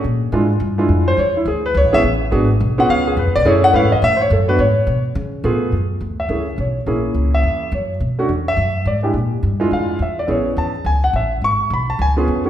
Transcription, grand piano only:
0.33 G#3 D4 E4 F4
0.78 G#3 D4 E4 F4
1.08 C5
1.19 C#5
1.37 E4
1.48 G#4
1.66 B4
1.77 C#5
1.92 B3 C#4 E4 G#4 E5
2.31 B3 D4 F#4 G#4
2.78 B3 C#4 F4 G#4 F#5
2.90 F5
3.07 G#4
3.18 B4
3.36 D5
3.45 A3 C#4 E4 G#4 C#5
3.64 F#5
3.73 A3 C#4 E4 B4 F5
3.92 D#5
4.04 E5
4.17 C5
4.21 C#5
4.33 A4
4.48 B3 D4 F#4 B4
4.60 C#5
5.44 A3 B3 F4 G#4
6.20 E5
6.30 A3 C#4 E4 G#4
6.60 C#5
6.87 A#3 C#4 E4 G#4
7.34 E5
7.75 C#5
8.19 A3 C#4 D4 F#4
8.48 E5
8.87 D5
9.03 G#3 D4 E4 G4
9.60 G#3 D4 E4 F4
9.73 F5
10.02 E5
10.19 D5
10.27 B3 C#4 E4 G#4 C#5
10.58 A5
10.86 G#5
11.04 F#5
11.16 E5
11.44 C#6
11.74 B5
11.90 A5
12.02 G#5
12.17 B3 C#4 F4 G#4
12.45 A3 C#4 E4 F#4

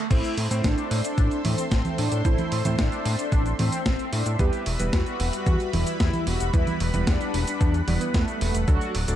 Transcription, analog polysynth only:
0.11 E4
0.64 D4
1.04 D4
1.45 C4
1.72 C4
1.98 D4
2.25 E4
2.79 D4
3.19 D4
3.59 C4
3.86 C4
4.12 D4
4.39 G4
4.93 F#4
5.33 F#4
5.73 E4
6.00 E4
6.27 F#4
6.54 E4
7.07 D4
7.47 D4
7.88 B3
8.14 A3
8.41 A3
8.68 F#4

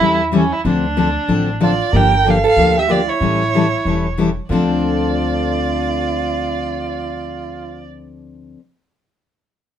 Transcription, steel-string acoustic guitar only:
0.00 E3 G3 C#4 E4 A4
0.32 E3 G3 C#4 E4 A4
0.65 D3 F3 C4 D4 A4
0.97 D3 F3 C4 D4 A4
1.28 D3 F3 C4 D4 A4
1.60 D3 F3 C4 D4 A4
1.94 D3 F3 A#3 D4 G4
2.26 D3 F3 A#3 D4 G4
2.58 D3 F3 A#3 D4 G4
2.88 D3 F3 A#3 D4 G4
3.22 E3 G3 C#4 E4 A4
3.54 E3 G3 C#4 E4 A4
3.86 E3 G3 C#4 E4 A4
4.18 E3 G3 C#4 E4 A4
4.49 D3 F3 C4 D4 A4

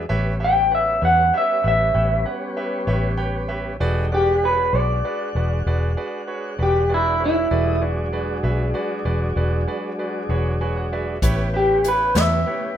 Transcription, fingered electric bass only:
0.10 A1
1.02 E2
1.64 A1
1.95 A1
2.87 A1
3.80 E1
4.73 B1
5.35 E1
5.66 E1
6.59 E1
7.51 E1
8.43 B1
9.05 E1
9.36 E1
10.29 E1
11.22 A1
12.15 E2

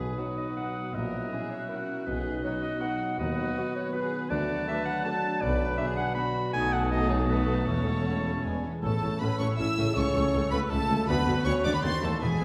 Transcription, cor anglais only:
Already playing: B4
0.95 E5
2.07 D#5
3.19 B4
4.30 A5
5.42 B4
6.54 A5
8.44 G#5
8.82 A4
9.20 B4
9.38 C#5
9.57 E5
9.94 C#5
10.52 B4
10.70 A4
11.08 B4
11.45 C#5
11.64 D5
11.75 B4
11.85 C5
12.04 A4
12.23 G#4

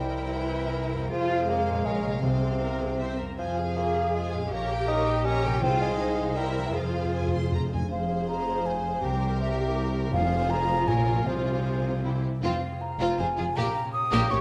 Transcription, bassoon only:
0.00 G3
0.37 E3
1.12 F3
1.49 A#3
1.86 G#3
2.22 C3
3.39 F3
3.77 A#3
4.15 G#3
4.53 A#3
4.88 D#4
5.25 C#4
5.63 C4
5.81 G#3
6.37 G3
6.66 E3
6.73 F3

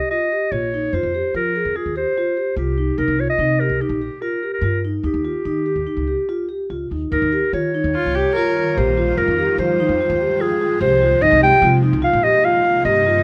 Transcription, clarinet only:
0.10 D#5
0.52 C#5
0.94 C5
1.36 A#4
1.77 G#4
1.97 C5
2.58 G4
2.98 A#4
3.20 C#5
3.30 D#5
3.60 A#4
3.82 G4
4.22 A#4
4.53 A#4
5.06 G4
7.12 A#4
7.54 C#5
8.78 C5
9.18 A#4
9.59 C5
10.41 G#4
10.82 C5
11.22 D#5
11.43 G5
12.04 F5
12.24 D#5
12.45 F5
12.85 D#5

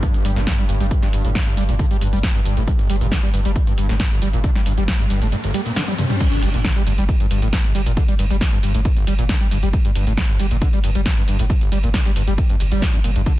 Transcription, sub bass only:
0.25 G1
0.36 G1
0.69 G1
0.81 G1
1.13 G1
1.25 G1
1.57 G1
1.69 G1
2.01 G1
2.13 G1
2.45 G1
2.57 G1
2.90 G1
3.01 G1
3.34 G1
3.45 G1
3.78 G1
3.89 G1
4.22 G1
4.33 G1
4.66 G1
4.78 G1
5.10 G1
5.22 G1
6.42 G1
6.54 G1
6.87 G1
6.98 G1
7.31 G1
7.42 G1
7.75 G1
7.86 G1
8.19 G1
8.31 G1
8.63 G1
8.75 G1
9.07 G1
9.19 G1
9.51 G1
9.63 G1
9.95 G1
10.07 G1
10.40 G1
10.51 G1
10.84 G1
10.95 G1
11.28 G1
11.39 G1
11.72 G1
11.83 G1
12.16 G1
12.28 G1
12.60 G1
12.72 G1
13.04 G1
13.16 G1

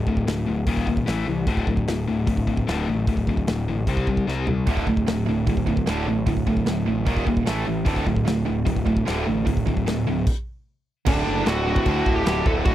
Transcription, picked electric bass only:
0.07 D1
0.27 D1
0.48 D1
0.67 D#1
1.08 A1
1.28 C2
1.47 D1
1.67 D1
1.88 D1
2.08 D1
2.28 D1
2.68 D1
2.88 A1
3.07 D1
3.27 D1
3.49 D1
3.68 A1
3.87 C2
4.28 C2
4.48 C2
4.67 D1
4.87 D1
5.07 D1
5.27 D1
5.47 D1
5.88 D1
6.07 A1
6.27 D1
6.47 D1
6.67 D1
6.87 A1
7.07 D#1
7.48 A1
7.67 A1
7.86 D1
8.07 D1
8.27 D1
8.48 D1
8.67 D1
9.08 D1
9.28 A1
9.47 D1
9.67 D1
9.87 D1
10.07 D1
11.07 D1
11.27 F#1
11.46 D1
11.86 D2
12.07 D1
12.26 D1
12.46 D1
12.66 D1

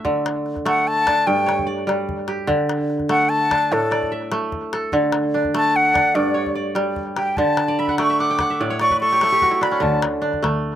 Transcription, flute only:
0.68 F#5
0.88 A5
1.27 G5
3.10 F#5
3.29 A5
3.73 A4
5.57 A5
5.76 F#5
6.15 D5
7.17 G5
7.37 A5
7.80 B5
7.99 C#6
8.20 D6
8.81 C#6
9.01 C#6
9.63 B5
9.83 A5

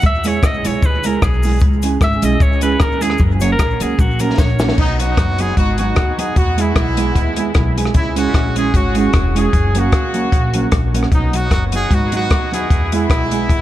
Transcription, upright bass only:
0.04 E2
0.43 C#2
0.65 B1
0.83 D#2
1.04 C#2
1.23 B1
1.62 C#2
2.01 G#1
2.23 B1
2.41 C#2
2.80 D#2
3.20 F#1
3.60 A#1
3.81 C#2
3.99 A#1
4.39 A#1
4.78 B1
5.18 F#1
5.58 G#1
5.97 D#2
6.37 E2
6.76 B1
7.16 D#2
7.56 B1
7.95 C#2
8.34 A#1
8.74 G#1
9.14 E1
9.54 F#1
9.93 C#2
10.33 A#1
10.72 A#1
11.12 B1
11.51 F#1
11.91 G#1
12.31 D#2
12.71 E2
13.10 B1
13.50 D#2

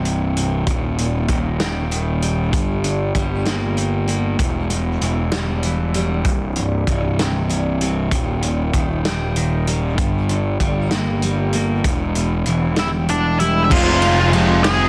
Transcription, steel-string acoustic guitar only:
Already playing: C2 C3
0.05 G2
0.38 C3
0.68 D#2
0.99 A#2
1.29 D#3
1.60 G3
1.91 D#3
2.22 G3
2.53 G2
2.84 D3
3.15 G3
3.45 A#3
3.77 G3
4.08 A#3
4.39 E2
4.70 B2
5.01 E3
5.32 G3
5.64 E3
5.95 G3
6.27 C2
6.57 G2
6.89 G2
7.20 C3
7.49 G2
7.81 C3
8.12 D#2
8.43 A#2
8.74 D#3
9.05 G3
9.36 D#3
9.67 G3
9.99 G2
10.29 D3
10.61 G3
10.92 A#3
11.23 G3
11.54 A#3
11.85 E2
12.16 B2
12.47 E3
12.79 G3
13.10 E3
13.41 G3

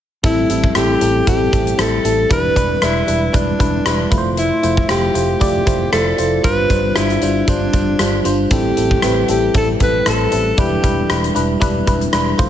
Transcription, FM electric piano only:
0.23 A2 G3 C4 E4 A4
0.49 G3 C4 E4 A4
0.75 G3 C4 E4 A4
1.00 G3 C4 E4 A4
1.27 G3 C4 E4 A4
1.52 G3 C4 E4 A4
1.78 G3 C4 E4 A4
2.04 G3 C4 E4 A4
2.29 E3 G3 D4 E4 B4
2.55 G3 D4 E4 B4
2.81 G3 D4 E4 B4
3.07 G3 D4 E4 B4
3.33 G3 D4 E4 B4
3.59 G3 D4 E4 B4
3.85 G3 D4 E4 B4
4.11 A3 E4 F4 B4
4.18 C5
4.63 A3 E4 F4 C5
4.88 A3 E4 F4 C5
5.14 A3 E4 F4 C5
5.40 A3 E4 F4 D5
5.66 A3 E4 F4 C5
5.92 A3 E4 F4 C5
6.17 A3 E4 F4 C5
6.43 G2 G3 D4 F4 C5
6.70 G3 D4 F4 C5
6.96 G3 D4 F4 C5
7.22 G3 D4 F4 C5
7.47 G3 D4 F4 C5
7.73 G3 D4 F4 C5
7.99 G3 D4 F4 C5
8.24 G3 D4 F4 C5
8.51 A2 G3 C4 E4 A4
8.77 G3 C4 E4 A4
9.02 G3 C4 E4 B4
9.28 G3 C4 E4 A4
9.54 G3 C4 E4 A4
9.79 G3 C4 E4 A4
10.05 G3 C4 E4 A4
10.31 G3 C4 E4 A4
10.57 E3 G3 D4 E4 B4
10.82 G3 D4 E4 B4
11.09 G3 D4 E4 B4
11.34 G3 D4 E4 B4
11.60 G3 D4 E4 B4
11.86 G3 D4 E4 B4
12.13 G3 D4 E4 B4
12.38 A3 E4 F4 C5

